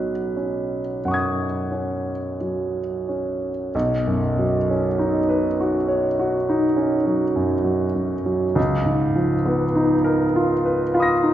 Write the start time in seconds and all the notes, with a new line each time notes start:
Already playing: B1 F#3 C#4 B4
0.37 C#4
1.05 F#2 F#5 C#6
1.11 D#6 G#6
1.71 C#4
2.41 F#3
3.09 C#4
3.75 B1
4.07 F#2
4.39 F#3
4.70 C#4
4.99 D#4
5.29 B4
5.60 F#4
5.89 C#5
6.19 F#4
6.49 D#4
6.76 C#4
7.06 F#3
7.36 F#2
7.65 F#3
7.95 F#2
8.26 F#3
8.55 C#2
8.85 G#2
9.16 F3
9.46 B3
9.75 D#4
10.04 A#4
10.36 F4
10.65 B4
10.94 F4 F5 B5
11.00 D#6 A#6
11.23 D#4